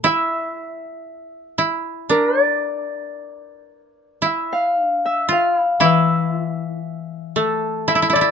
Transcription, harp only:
Already playing: A4
0.06 E5
2.11 A#4
2.44 D5
4.26 E5
4.53 F5
5.06 E5
5.32 F5
5.85 E5
7.36 A4
7.88 E5
8.13 D5

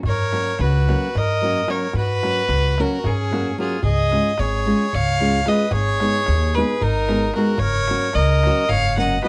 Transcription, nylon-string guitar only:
0.32 F#3 A#3 C#4 F#4
0.88 F#3 A#3 C#4 F#4
1.42 F#3 A#3 C#4 F#4
1.67 F#3 A#3 C#4 F#4
2.23 F#3 A#3 C#4 F#4
2.79 F#3 A#3 C#4 F#4
3.31 F#3 A#3 C#4 F#4
3.58 F#3 A#3 C#4 F#4
4.11 G#3 C#4 F4 G#4
4.66 G#3 C#4 F4 G#4
5.20 G#3 C#4 F4 G#4
5.46 G#3 C#4 F4 G#4
6.00 G#3 B3 D#4 G#4
6.56 G#3 B3 D#4 G#4
7.08 G#3 B3 D#4 G#4
7.36 G#3 B3 D#4 G#4
7.89 F#3 A#3 C#4 F#4
8.45 F#3 A#3 C#4 F#4
8.97 F#3 A#3 C#4 F#4
9.23 F#3 A#3 C#4 F#4

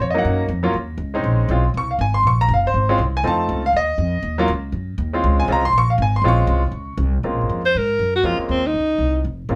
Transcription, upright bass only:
0.00 F2
0.25 F#2
0.48 F2
0.73 D#2
0.98 C#2
1.23 A#1
1.48 B1
1.74 C2
1.99 G#1
2.23 A#1
2.48 F#1
2.74 G#1
2.98 C2
3.23 F2
3.49 C#2
3.73 D#2
3.98 F2
4.22 D#2
4.48 C#2
4.72 F#2
4.98 D#2
5.24 C#2
5.48 C2
5.73 A#1
5.98 G#1
6.22 A#1
6.47 C2
6.71 C#2
6.97 C2
7.23 C#2
7.33 A#1
7.41 G#1
7.49 F2
7.75 G#2
7.99 F#2
8.23 F2
8.38 muted upright bass stroke
8.49 D#2
8.74 C#2
8.98 C2
9.24 F1
9.49 G#1

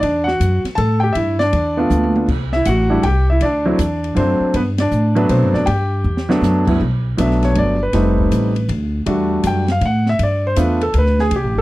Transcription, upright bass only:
0.03 E2
0.40 F#2
0.64 muted upright bass stroke
0.78 A2
1.15 G2
1.53 E2
1.90 D2
2.28 C2
2.66 A1
3.04 C2
3.41 D2
3.79 E2
4.16 F#2
4.40 muted upright bass stroke
4.54 G2
4.91 A2
5.29 B2
5.42 G2
5.54 F#2
5.67 G2
6.04 E2
6.42 F#2
6.80 B1
7.18 B1
7.56 G1
7.94 F1
8.31 A1
8.69 D2
9.06 E2
9.44 F#2
9.81 A2
10.19 G2
10.57 E2
10.94 D2
11.31 C2
11.43 A1
11.55 G1

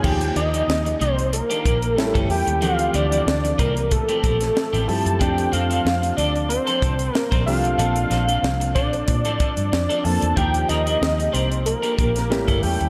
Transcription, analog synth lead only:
0.05 G5
0.36 D#5
1.01 C5
1.33 A#4
1.96 A4
2.30 G5
2.62 F5
2.95 D5
3.59 A#4
3.92 A4
4.88 A5
5.20 G5
5.53 F5
6.17 D5
6.49 C5
7.15 A#4
7.46 F5
8.75 D5
10.04 A5
10.37 G5
10.69 D#5
11.33 C5
11.66 A#4
12.63 G5

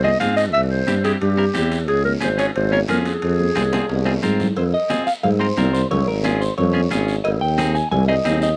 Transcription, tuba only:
Already playing: C2
0.20 G#2
0.54 C2
0.88 G2
1.22 G2
1.55 E2
1.89 C#2
2.22 G#1
2.56 G#1
2.90 F2
3.23 F2
3.56 C2
3.90 C2
4.24 G#2
4.57 F2
5.24 G#2
5.57 C2
5.91 C#2
6.09 G#1
6.59 F2
6.92 G#1
7.25 G#1
7.42 D#2
7.92 C2
8.26 D#2

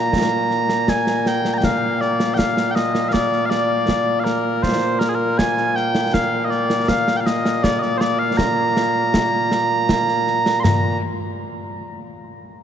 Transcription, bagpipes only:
Already playing: A#2 A#3 A#5
0.89 G#5
1.27 G5
1.54 A#5
1.58 G5
1.65 F5
2.01 D5
2.34 F5 G5
2.71 G5
2.75 D#5
3.09 D5 F5
3.46 F5
3.50 D5
4.20 F5
4.24 A#4
4.63 C5
4.99 A#4
5.09 G#4
5.15 A#4
5.38 G#5
5.76 G5
6.14 F5
6.45 D#5
6.50 D5
6.89 F5
7.17 F5 G5
7.26 D#5
7.63 D5
7.79 D5 D#5
7.97 C5 D5
8.19 F5
8.37 A#5
10.60 A#5 C6

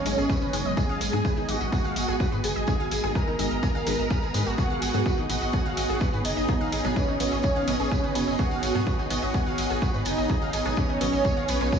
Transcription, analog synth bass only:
0.06 G#1
0.18 G#1
0.42 F#1
0.53 F#1
0.65 F#1
0.89 G#1
1.01 G#1
1.13 G#2
1.37 G#1
1.49 G#1
1.61 G#1
1.84 G#1
1.96 G#1
2.08 G#1
2.32 G#2
2.44 F#1
2.56 G#1
2.80 G#1
2.91 G#1
3.04 G#1
3.27 G#1
3.39 G#1
3.51 G#1
3.75 G#1
3.87 G#1
3.99 G#1
4.23 G#1
4.34 G#2
4.46 G#1
4.70 G#1
4.82 G#1
4.94 G#2
5.18 G#1
5.30 G#1
5.42 G#1
5.66 G#1
5.77 G#1
5.89 G#1
6.13 G#2
6.25 F#1
6.37 G#1
6.61 G#1
6.72 G#1
6.85 G#1
7.08 G#1
7.20 G#1
7.32 G#1
7.56 G#1
7.68 G#1
7.80 G#1
8.04 F#1
8.15 F#1
8.27 F#1
8.51 G#1
8.63 G#1
8.75 G#2
8.99 G#1
9.11 G#1
9.23 G#1
9.46 G#1
9.58 G#1
9.70 G#1
9.94 G#2
10.06 F#1
10.18 G#1
10.42 G#1
10.53 G#1
10.65 G#1
10.89 G#1
11.01 G#1
11.13 G#1
11.37 G#1
11.49 A#1
11.61 A#1

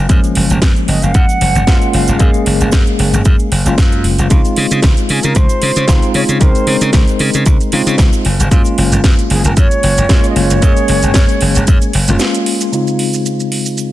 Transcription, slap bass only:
0.10 F#2
0.36 F#1
0.50 F#1
0.88 F#1
1.03 F#1
1.15 F#2
1.41 F#1
1.55 F#1
1.67 F#2
1.94 F#1
2.08 F#1
2.20 F#2
2.46 F#1
2.61 F#1
2.73 F#2
2.99 F#1
3.13 F#1
3.26 F#2
3.52 F#1
3.66 F#1
3.78 F#2
4.04 F#1
4.19 F#1
4.31 C#2
4.57 C#3
4.71 C#3
4.84 C#2
5.10 C#3
5.24 C#3
5.36 C#2
5.62 C#3
5.76 C#3
5.89 C#2
6.15 C#3
6.29 C#3
6.41 C#2
6.67 C#3
6.81 C#3
6.94 C#2
7.20 C#3
7.34 C#3
7.47 C#2
7.73 C#3
7.87 C#3
7.99 C#2
8.25 F#1
8.40 F#1
8.51 F#2
8.78 F#1
8.92 F#1
9.04 F#2
9.30 F#1
9.45 F#1
9.57 F#2
9.83 F#1
9.98 F#1
10.10 F#2
10.36 F#1
10.51 F#1
10.62 F#2
10.89 F#1
11.03 F#1
11.15 F#2
11.42 F#1
11.56 F#1
11.68 F#2
11.95 F#1
12.08 F#1

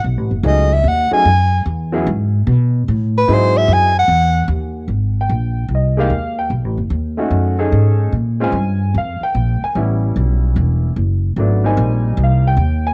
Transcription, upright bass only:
0.04 B1
0.17 A1
0.31 F#1
0.43 C#2
0.84 D#2
1.12 muted upright bass stroke
1.25 F#2
1.66 E2
2.06 G#2
2.47 B2
2.88 A2
3.28 G#2
3.68 F#2
4.08 E2
4.48 D#2
4.88 G#1
5.30 A#1
5.68 C2
6.10 D#2
6.50 B1
6.64 A1
6.77 F#1
6.90 D#2
7.31 F#2
7.72 G#2
8.12 A#2
8.52 G2
8.94 F2
9.21 muted upright bass stroke
9.35 A#1
9.62 muted upright bass stroke
9.75 A1
10.16 B1
10.56 E1
10.96 F#1
11.36 G#1
11.77 A#1
12.17 C2
12.57 D#2

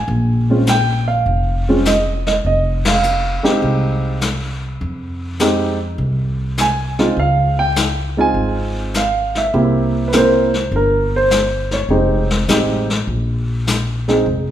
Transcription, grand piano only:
Already playing: G#5
0.50 G#3 C4 C#4 F4
0.69 G5
1.08 F5
1.69 G#3 C4 C#4 F4
1.87 D#5
2.27 D#5
2.46 D#5
2.88 F5
3.43 G#3 C4 D#4 G4
5.40 G#3 C4 D#4 G4
6.61 G#5
6.99 G#3 C4 D#4 F4
7.19 F5
7.59 G5
8.17 G#3 C4 D#4 F4 G#5
8.97 F5
9.37 E5
9.53 A#3 C4 E4 G4
10.08 B4
10.13 A#3 C4 E4 A#4 C5
10.76 A#4
11.16 C5
11.73 C#5
11.90 G#3 C4 D#4 G4 C5
12.49 G#3 C4 D#4 G4
14.08 G#3 C4 D#4 G#4

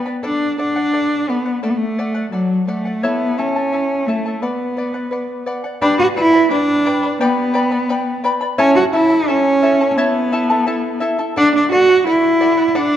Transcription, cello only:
0.25 D4
0.60 D4
1.29 B3
1.64 A3
1.71 B3
1.77 A3
2.33 F#3
2.69 A3
3.04 B3
3.39 C#4
4.07 A3
4.42 B3
5.82 D4
5.99 F#4
6.18 E4
6.52 D4
7.22 B3
8.59 C#4
8.76 F#4
8.94 E4
9.28 C#4
9.91 C#4
9.97 B3
11.38 D4
11.55 D4
11.72 F#4
12.07 E4
12.68 E4
12.76 D4

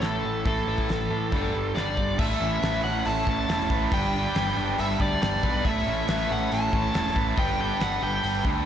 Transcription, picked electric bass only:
0.03 A1
0.25 A1
0.46 A1
0.68 A1
0.89 A1
1.11 A2
1.33 G1
1.54 G1
1.75 G1
1.98 G1
2.19 A1
2.40 A1
2.62 A1
2.84 A1
3.06 A1
3.27 A1
3.48 E1
3.70 A1
3.92 G1
4.36 G1
4.57 G1
4.78 G1
5.00 D2
5.22 G1
5.44 B1
5.65 A1
5.87 A1
6.09 A1
6.30 A1
6.52 A1
6.73 A1
6.95 E1
7.16 A1
7.38 G1
7.80 G1
8.02 G1
8.24 G1
8.45 D2

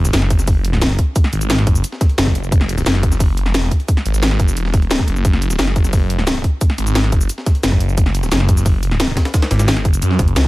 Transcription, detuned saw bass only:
Already playing: F#1
0.13 F#1
1.33 G#1
1.67 F#1
2.18 F#1
2.52 F#1
2.86 F#1
3.45 F1
4.05 G#1
4.40 F#1
4.57 E1
5.08 F#1
5.25 F#1
5.59 F#1
6.78 G#1
7.12 F#1
7.63 F#1
7.98 F#1
8.32 F#1
9.51 G#1
9.85 F#1
10.02 F#2
10.19 F#1
10.36 C#2

